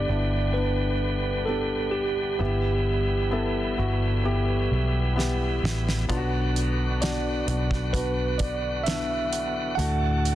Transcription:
0.00 2.40 G2 medium
0.00 2.36 D3 medium
0.00 2.42 D3 medium
0.00 6.05 G3 medium
0.00 0.08 B3 medium
0.00 6.05 B3 soft
0.00 0.09 D4 medium
0.00 1.48 G4 medium
0.00 0.58 D5 medium
0.08 2.36 G1 medium
0.08 0.52 B3 medium
0.08 0.53 D4 medium
0.08 0.53 E4 medium
0.54 1.43 B3 medium
0.54 1.43 D4 medium
0.54 1.44 E4 medium
0.54 1.50 B4 medium
1.46 2.35 B3 medium
1.46 2.35 D4 medium
1.46 2.36 G4 medium
1.46 1.94 A4 medium
1.91 3.73 G4 medium
2.39 3.75 G1 medium
2.39 3.74 G2 soft
2.39 6.06 E3 medium
2.39 3.74 G3 medium
2.39 3.27 B3 medium
2.39 3.27 E4 medium
2.39 3.28 G4 medium
3.31 3.75 B3 medium
3.31 3.76 E4 medium
3.31 3.76 A4 medium
3.77 4.67 G1 medium
3.77 4.22 B3 medium
3.77 4.22 E4 medium
3.77 4.23 F#4 medium
4.23 5.12 B3 medium
4.23 5.12 E4 medium
4.23 5.13 G4 medium
4.71 5.59 B1 medium
5.16 6.04 B3 medium
5.16 6.05 E4 medium
5.16 6.05 G4 medium
5.16 snare soft
5.63 6.06 A1 medium
5.63 snare medium
5.89 snare medium
6.09 7.44 B1 loud
6.09 7.44 B2 medium
6.09 9.75 D3 medium
6.09 7.44 F#3 medium
6.09 6.97 B3 loud
6.09 9.75 B3 soft
6.09 6.97 D4 medium
6.09 6.16 F4 medium
6.09 10.35 F#4 medium
6.09 kick loud
6.09 closed hi-hat medium
6.17 7.01 F#4 loud
6.56 closed hi-hat medium
7.01 7.45 B3 medium
7.01 7.45 D4 medium
7.01 7.46 F#4 medium
7.01 7.97 D5 medium
7.01 snare medium
7.01 closed hi-hat medium
7.47 9.74 B1 medium
7.47 7.91 B3 medium
7.47 7.92 D4 medium
7.47 7.92 F#4 medium
7.47 closed hi-hat medium
7.71 kick medium
7.71 snare soft
7.93 8.81 B3 medium
7.93 8.82 D4 medium
7.93 8.82 F#4 medium
7.93 8.41 B4 medium
7.93 kick medium
7.93 closed hi-hat medium
8.38 8.82 D5 medium
8.38 kick medium
8.38 closed hi-hat medium
8.83 9.74 B3 medium
8.83 9.74 D4 medium
8.83 9.73 E5 medium
8.83 closed hi-hat medium
8.88 9.75 E4 medium
8.88 snare medium
9.33 closed hi-hat medium
9.75 10.35 D2 loud
9.75 10.35 A2 medium
9.75 10.35 D3 medium
9.75 10.35 A3 medium
9.75 10.35 D4 medium
9.75 10.35 F#5 medium
9.75 closed hi-hat medium
9.79 10.35 F#4 medium
10.25 closed hi-hat medium

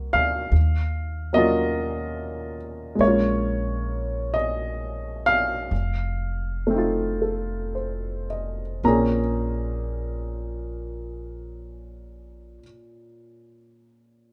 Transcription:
0.00 0.49 A#3 soft
0.00 0.52 C4 soft
0.00 0.53 D#4 soft
0.00 0.55 F#4 soft
0.13 0.49 D2 medium
0.13 1.30 F5 medium
0.52 2.96 D#2 medium
1.33 2.99 F#3 soft
1.33 2.98 A#3 soft
1.33 3.01 C#4 soft
1.33 2.55 D#5 medium
1.37 3.01 F4 medium
2.95 5.67 A#1 medium
2.95 5.69 G#3 soft
2.95 5.71 A#3 soft
3.01 5.73 C#4 soft
3.01 4.36 C#5 medium
3.07 5.75 F4 soft
4.34 5.22 D#5 medium
5.26 8.26 F5 medium
5.71 8.79 F1 medium
6.67 8.80 A3 soft
6.67 8.82 C4 soft
6.74 8.84 D#4 soft
6.74 8.86 F4 soft
7.22 8.26 A4 soft
7.75 8.62 C5 soft
8.30 9.18 D#5 soft
8.83 12.57 A#1 medium
8.83 12.62 A#2 soft
8.83 12.62 A#3 soft
8.83 12.63 C4 soft
8.83 12.64 C#4 soft
8.83 12.65 G#4 medium
8.83 12.59 A#5 medium

